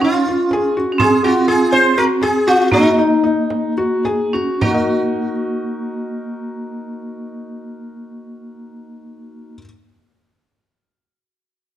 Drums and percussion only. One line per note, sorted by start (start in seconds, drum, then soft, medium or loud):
0.02 frame drum medium
0.51 frame drum medium
1.00 frame drum medium
1.73 frame drum soft
2.22 frame drum soft
2.72 frame drum medium
3.24 frame drum soft
3.50 frame drum soft
4.05 frame drum soft
4.62 frame drum medium